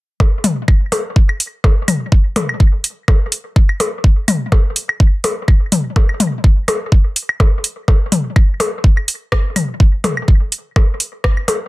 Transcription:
0.20 kick, percussion blips
0.44 mid tom, open hi-hat
0.68 kick, claves
0.92 open hi-hat, percussion blips
1.16 kick
1.29 claves
1.40 open hi-hat
1.64 kick, percussion blips
1.88 mid tom, open hi-hat, claves
2.12 kick
2.36 mid tom, open hi-hat, percussion blips
2.49 claves
2.60 kick
2.84 open hi-hat
3.08 kick, percussion blips, claves
3.32 open hi-hat
3.56 kick
3.69 claves
3.80 open hi-hat, percussion blips
4.04 kick
4.28 mid tom, open hi-hat, claves
4.52 kick, percussion blips
4.76 open hi-hat
4.89 claves
5.00 kick
5.24 open hi-hat, percussion blips
5.48 kick, claves
5.72 mid tom, open hi-hat
5.96 kick, percussion blips
6.09 claves
6.20 mid tom, open hi-hat
6.44 kick
6.68 open hi-hat, percussion blips, claves
6.92 kick
7.16 open hi-hat
7.29 claves
7.40 kick, percussion blips
7.64 open hi-hat
7.88 kick, percussion blips
8.12 mid tom, open hi-hat
8.36 kick, claves
8.60 open hi-hat, percussion blips
8.84 kick
8.97 claves
9.08 open hi-hat
9.32 kick, cross-stick, percussion blips
9.56 mid tom, open hi-hat, claves
9.80 kick
10.04 mid tom, open hi-hat, percussion blips
10.17 claves
10.28 kick
10.52 open hi-hat
10.76 kick, percussion blips, claves
11.00 open hi-hat
11.24 kick, cross-stick
11.37 claves
11.48 open hi-hat, percussion blips

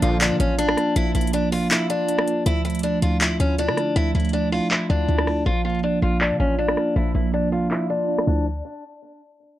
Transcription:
Already playing: F3 A#3 D4
0.02 A#1 A#2 D3 F3 F4, closed hi-hat
0.21 D4 F5, clap, closed hi-hat
0.31 D3
0.40 A1 C#4 F4, closed hi-hat
0.58 D4, closed hi-hat
0.69 cross-stick
0.77 A#3, cross-stick, closed hi-hat
0.96 A#1 F3 E4, closed hi-hat
1.15 A#1 A#3 E4, closed hi-hat
1.21 closed hi-hat
1.27 closed hi-hat
1.33 D4, closed hi-hat
1.52 F4, open hi-hat
1.71 E4 F5, clap, closed hi-hat
1.90 D4 F4, closed hi-hat
2.09 D4, closed hi-hat
2.18 cross-stick
2.27 A#3, closed hi-hat
2.46 D2 F3 E4, closed hi-hat
2.65 A3 E4, closed hi-hat
2.70 closed hi-hat
2.75 closed hi-hat
2.79 closed hi-hat
2.83 D4, closed hi-hat
3.02 D2 E4 F4, closed hi-hat
3.21 E4 F4, clap, closed hi-hat
3.40 D2 C#4 E4, closed hi-hat
3.58 D4, closed hi-hat
3.68 D3, cross-stick
3.77 A3, cross-stick, closed hi-hat
3.96 D2 F3 E4, closed hi-hat
4.15 D2 A3 E4, closed hi-hat
4.20 closed hi-hat
4.25 closed hi-hat
4.29 closed hi-hat
4.33 D4, closed hi-hat
4.52 E4 F4, open hi-hat
4.71 E4 F4, clap, closed hi-hat
4.90 D2 D4 E4, closed hi-hat
5.09 D2 D4, closed hi-hat
5.18 cross-stick
5.27 A3, cross-stick, open hi-hat
5.46 A#1 F3 F4, closed hi-hat
5.65 A#3 F4, closed hi-hat
5.70 closed hi-hat
5.75 closed hi-hat
5.79 closed hi-hat
5.83 D4, closed hi-hat
6.02 A#1 F4, closed hi-hat
6.21 D4 F5, clap, closed hi-hat
6.31 D3
6.40 A1 C#4 F4, closed hi-hat
6.58 D4, closed hi-hat
6.68 cross-stick
6.77 A#3, cross-stick, closed hi-hat
6.96 A#1 F3 E4, closed hi-hat
7.15 A#1 A#3 E4, closed hi-hat
7.21 closed hi-hat
7.27 closed hi-hat
7.33 D4, closed hi-hat
7.52 F4, open hi-hat
7.71 E4 F5, clap
7.90 D4 F4, closed hi-hat
8.08 D4, closed hi-hat
8.18 cross-stick
8.27 D2 F3 A3 D4 E4, crash

